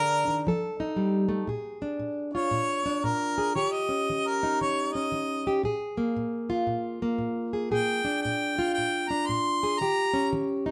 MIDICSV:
0, 0, Header, 1, 3, 480
1, 0, Start_track
1, 0, Tempo, 519031
1, 1374, Time_signature, 4, 2, 24, 8
1, 9906, End_track
2, 0, Start_track
2, 0, Title_t, "Harmonica"
2, 0, Program_c, 0, 22
2, 0, Note_on_c, 0, 70, 115
2, 399, Note_off_c, 0, 70, 0
2, 2160, Note_on_c, 0, 73, 86
2, 2816, Note_on_c, 0, 70, 76
2, 2830, Note_off_c, 0, 73, 0
2, 3278, Note_off_c, 0, 70, 0
2, 3284, Note_on_c, 0, 73, 77
2, 3437, Note_on_c, 0, 75, 79
2, 3451, Note_off_c, 0, 73, 0
2, 3950, Note_on_c, 0, 70, 82
2, 3964, Note_off_c, 0, 75, 0
2, 4250, Note_off_c, 0, 70, 0
2, 4263, Note_on_c, 0, 73, 80
2, 4559, Note_on_c, 0, 75, 76
2, 4572, Note_off_c, 0, 73, 0
2, 5185, Note_off_c, 0, 75, 0
2, 7134, Note_on_c, 0, 79, 85
2, 7599, Note_off_c, 0, 79, 0
2, 7603, Note_on_c, 0, 79, 72
2, 8074, Note_off_c, 0, 79, 0
2, 8080, Note_on_c, 0, 79, 82
2, 8398, Note_on_c, 0, 82, 82
2, 8412, Note_off_c, 0, 79, 0
2, 8564, Note_on_c, 0, 84, 88
2, 8578, Note_off_c, 0, 82, 0
2, 9052, Note_on_c, 0, 82, 93
2, 9066, Note_off_c, 0, 84, 0
2, 9520, Note_off_c, 0, 82, 0
2, 9906, End_track
3, 0, Start_track
3, 0, Title_t, "Steel-string acoustic guitar"
3, 0, Program_c, 1, 25
3, 0, Note_on_c, 1, 50, 63
3, 0, Note_on_c, 1, 62, 57
3, 0, Note_on_c, 1, 68, 69
3, 250, Note_off_c, 1, 50, 0
3, 258, Note_on_c, 1, 51, 73
3, 407, Note_off_c, 1, 68, 0
3, 411, Note_off_c, 1, 62, 0
3, 426, Note_off_c, 1, 51, 0
3, 433, Note_on_c, 1, 53, 76
3, 445, Note_on_c, 1, 69, 67
3, 740, Note_on_c, 1, 63, 64
3, 868, Note_off_c, 1, 53, 0
3, 891, Note_on_c, 1, 55, 69
3, 1185, Note_off_c, 1, 55, 0
3, 1189, Note_on_c, 1, 57, 64
3, 1363, Note_off_c, 1, 63, 0
3, 1363, Note_on_c, 1, 46, 69
3, 1366, Note_off_c, 1, 69, 0
3, 1369, Note_off_c, 1, 57, 0
3, 1377, Note_on_c, 1, 68, 60
3, 1682, Note_on_c, 1, 62, 55
3, 1812, Note_off_c, 1, 46, 0
3, 1845, Note_on_c, 1, 46, 66
3, 2171, Note_on_c, 1, 65, 52
3, 2292, Note_off_c, 1, 46, 0
3, 2324, Note_on_c, 1, 46, 67
3, 2632, Note_off_c, 1, 62, 0
3, 2643, Note_on_c, 1, 62, 57
3, 2772, Note_off_c, 1, 46, 0
3, 2811, Note_on_c, 1, 46, 67
3, 3115, Note_off_c, 1, 68, 0
3, 3125, Note_on_c, 1, 68, 59
3, 3255, Note_off_c, 1, 46, 0
3, 3273, Note_off_c, 1, 62, 0
3, 3274, Note_off_c, 1, 68, 0
3, 3277, Note_off_c, 1, 65, 0
3, 3288, Note_on_c, 1, 51, 74
3, 3295, Note_on_c, 1, 67, 61
3, 3596, Note_on_c, 1, 61, 55
3, 3734, Note_off_c, 1, 51, 0
3, 3788, Note_on_c, 1, 51, 62
3, 4099, Note_on_c, 1, 63, 63
3, 4223, Note_off_c, 1, 51, 0
3, 4266, Note_on_c, 1, 51, 68
3, 4555, Note_off_c, 1, 61, 0
3, 4580, Note_on_c, 1, 61, 62
3, 4703, Note_off_c, 1, 51, 0
3, 4734, Note_on_c, 1, 51, 73
3, 5036, Note_off_c, 1, 67, 0
3, 5059, Note_on_c, 1, 67, 63
3, 5177, Note_off_c, 1, 51, 0
3, 5202, Note_off_c, 1, 61, 0
3, 5202, Note_off_c, 1, 63, 0
3, 5211, Note_on_c, 1, 46, 70
3, 5222, Note_off_c, 1, 67, 0
3, 5225, Note_on_c, 1, 68, 69
3, 5526, Note_on_c, 1, 58, 49
3, 5655, Note_off_c, 1, 46, 0
3, 5701, Note_on_c, 1, 46, 68
3, 6008, Note_on_c, 1, 65, 61
3, 6141, Note_off_c, 1, 46, 0
3, 6167, Note_on_c, 1, 46, 72
3, 6491, Note_off_c, 1, 58, 0
3, 6495, Note_on_c, 1, 58, 59
3, 6614, Note_off_c, 1, 46, 0
3, 6644, Note_on_c, 1, 46, 71
3, 6955, Note_off_c, 1, 68, 0
3, 6966, Note_on_c, 1, 68, 63
3, 7093, Note_off_c, 1, 46, 0
3, 7116, Note_off_c, 1, 68, 0
3, 7118, Note_off_c, 1, 65, 0
3, 7131, Note_on_c, 1, 46, 65
3, 7137, Note_on_c, 1, 68, 63
3, 7438, Note_off_c, 1, 58, 0
3, 7442, Note_on_c, 1, 62, 53
3, 7577, Note_off_c, 1, 46, 0
3, 7631, Note_on_c, 1, 46, 67
3, 7940, Note_on_c, 1, 65, 60
3, 8067, Note_off_c, 1, 46, 0
3, 8119, Note_on_c, 1, 46, 69
3, 8400, Note_off_c, 1, 62, 0
3, 8421, Note_on_c, 1, 62, 52
3, 8552, Note_off_c, 1, 46, 0
3, 8593, Note_on_c, 1, 46, 69
3, 8881, Note_off_c, 1, 68, 0
3, 8909, Note_on_c, 1, 68, 61
3, 9029, Note_off_c, 1, 46, 0
3, 9046, Note_off_c, 1, 62, 0
3, 9046, Note_off_c, 1, 65, 0
3, 9049, Note_off_c, 1, 68, 0
3, 9075, Note_on_c, 1, 51, 70
3, 9080, Note_on_c, 1, 67, 66
3, 9373, Note_on_c, 1, 61, 55
3, 9510, Note_off_c, 1, 51, 0
3, 9550, Note_on_c, 1, 51, 70
3, 9859, Note_on_c, 1, 63, 57
3, 9906, Note_off_c, 1, 51, 0
3, 9906, Note_off_c, 1, 61, 0
3, 9906, Note_off_c, 1, 63, 0
3, 9906, Note_off_c, 1, 67, 0
3, 9906, End_track
0, 0, End_of_file